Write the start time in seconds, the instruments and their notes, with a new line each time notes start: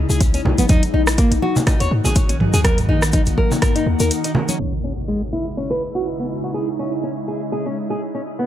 Already playing: ambient pad C#3 G#3 D#4 E4
0.10 808-style bass C#2, nylon-string guitar G#4, shaker
0.21 kick, closed hi-hat, shaker
0.34 nylon-string guitar C#4, closed hi-hat, shaker
0.45 808-style bass B1, low conga
0.58 808-style bass G#1, nylon-string guitar B3, closed hi-hat, high conga, shaker
0.69 808-style bass D#2, ambient pad D#3 A#3 F#4, nylon-string guitar D#4, kick, closed hi-hat, high conga, shaker
0.83 closed hi-hat, shaker
0.94 808-style bass A#1, nylon-string guitar D#4
1.07 cross-stick, shaker
1.18 nylon-string guitar A#3, kick, closed hi-hat, shaker
1.32 808-style bass A#1, closed hi-hat, shaker
1.42 nylon-string guitar F#4, high conga
1.56 low conga, shaker
1.67 nylon-string guitar D#4, kick, cross-stick, closed hi-hat, low conga, shaker
1.80 808-style bass D#2, nylon-string guitar C#5, closed hi-hat, shaker
1.91 808-style bass G#2
2.04 808-style bass A#1, nylon-string guitar G#4, low conga, shaker
2.16 kick, closed hi-hat, shaker
2.29 nylon-string guitar C#4, closed hi-hat, shaker
2.40 mid tom, high conga
2.54 808-style bass D#2, nylon-string guitar G#4, closed hi-hat, shaker
2.64 nylon-string guitar A#4, kick, cross-stick, closed hi-hat, high conga, shaker
2.78 closed hi-hat, mid tom, shaker
2.89 808-style bass A#1, nylon-string guitar D#4
3.02 cross-stick, shaker
3.12 nylon-string guitar D#4, kick, closed hi-hat, high conga, shaker
3.26 808-style bass A#1, closed hi-hat, shaker
3.38 nylon-string guitar A#4, kick, high conga
3.52 low conga, shaker
3.62 nylon-string guitar A#4, kick, cross-stick, closed hi-hat, mid tom, shaker
3.76 nylon-string guitar D#4, closed hi-hat, shaker
3.87 808-style bass D#2
4.00 808-style bass D#2, nylon-string guitar A#4, closed hi-hat, shaker
4.11 closed hi-hat, shaker
4.24 nylon-string guitar D#4, closed hi-hat, shaker
4.35 low conga
4.48 nylon-string guitar C#4, closed hi-hat, high conga, shaker
4.60 ambient pad C#3 G#3 D#4 E4, nylon-string guitar C#4, impact
4.84 nylon-string guitar C#4
5.08 nylon-string guitar G#3
5.33 nylon-string guitar E4
5.57 nylon-string guitar C#4
5.70 nylon-string guitar B4
5.95 nylon-string guitar F#4
6.19 nylon-string guitar B3
6.44 nylon-string guitar F#4
6.54 nylon-string guitar G#4
6.79 nylon-string guitar C#4
7.03 nylon-string guitar C#4
7.28 nylon-string guitar G#4
7.52 nylon-string guitar G#4
7.66 nylon-string guitar C#4
7.90 nylon-string guitar G#4
8.15 nylon-string guitar C#4
8.39 nylon-string guitar B3